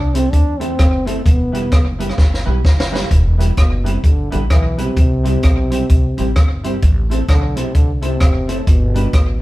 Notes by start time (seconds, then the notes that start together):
Already playing: C2 D4
0.14 A3 C4 E4 A4 C5, closed hi-hat
0.32 E2 D4 A4 C5, kick, closed hi-hat
0.60 A3 C4 E4 A4 C5, closed hi-hat
0.79 F#1, kick, cross-stick, closed hi-hat
1.06 A3 C4 E4 A4 C5, closed hi-hat
1.24 E1 B3, kick, closed hi-hat
1.52 G3 B3 E4 G4 B4, closed hi-hat
1.72 F#1, kick, cross-stick, closed hi-hat
1.99 G3 B3 E4 G4 B4, closed hi-hat
2.09 cross-stick
2.17 G1 G4 B4, kick, snare
2.34 snare
2.45 B1 G3 B3 E4 G4 B4
2.65 F#1, kick, snare
2.80 snare
2.91 G3 B3 E4 G4 B4
2.95 snare
3.11 E1, kick, closed hi-hat
3.38 G3 B3 E4 G4 B4, closed hi-hat
3.57 F#1 B2, kick, cross-stick, closed hi-hat
3.84 C3 G3 B3 E4 G4 B4, closed hi-hat
4.03 G1 D3 G4 B4, kick, closed hi-hat
4.30 A1 D3 G3 B3 E4 G4 B4, closed hi-hat
4.50 B1 E3, kick, cross-stick, closed hi-hat
4.78 C3 G3 B3 E4 G4 B4, closed hi-hat
4.97 C2, kick, closed hi-hat
5.23 G3 C4 E4 G4 C5, closed hi-hat
5.43 B1, kick, cross-stick, closed hi-hat
5.70 G3 C4 E4 G4 C5, closed hi-hat
5.89 C2 G4 C5, kick, closed hi-hat
6.17 A1 G3 C4 E4 G4 C5, closed hi-hat
6.36 G1, kick, cross-stick, closed hi-hat
6.64 G3 C4 E4 G4 C5, closed hi-hat
6.82 A1, kick, closed hi-hat
7.10 A3 C4 E4 A4 C5, closed hi-hat
7.28 B1 D3, kick, cross-stick, closed hi-hat
7.56 C3 A3 C4 E4 A4 C5, closed hi-hat
7.75 C2 D3 A4 C5, kick, closed hi-hat
7.94 D3
8.02 C3 A3 C4 E4 A4 C5, closed hi-hat
8.20 F#1, kick, cross-stick, closed hi-hat
8.48 A2 A3 C4 E4 A4 C5, closed hi-hat
8.67 G1 B2, kick, closed hi-hat
8.94 G3 B3 D4 G4 B4, closed hi-hat
9.13 A1, kick, cross-stick, closed hi-hat